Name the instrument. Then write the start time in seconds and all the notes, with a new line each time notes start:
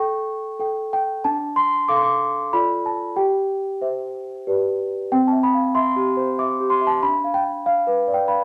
celesta
Already playing: A4 G5 C#6
0.60 A4 G5
0.93 G5
1.24 D4 A5
1.56 C6
1.88 A4 F5 D6
1.97 C6
2.02 D6
2.53 F4 A4 D5 B5
2.86 A5
3.16 G4 G5
3.81 C5 E5
4.47 G4 B4 D5
5.12 C4 G5
5.27 A5
5.32 E5
5.43 B5
5.54 F5
5.75 E5 C6
5.96 G4
6.17 C5
6.38 E5 D6
6.60 G4
6.70 C6
6.81 E5
6.87 A5
7.02 D4 B5
7.24 F5
7.34 G5
7.44 G5
7.66 F5
7.87 B4
8.08 D5
8.14 G5
8.28 F5 B5